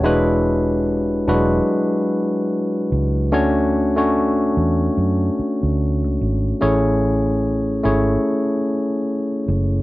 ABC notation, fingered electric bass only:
X:1
M:4/4
L:1/16
Q:"Swing 16ths" 1/4=73
K:A
V:1 name="Fingered electric bass" clef=bass
E,,,6 E,,,2 z6 C,,2 | D,,6 E,,2 F,,2 z D,,2 C,, G,,,2 | A,,,6 G,,,2 z6 F,,,2 |]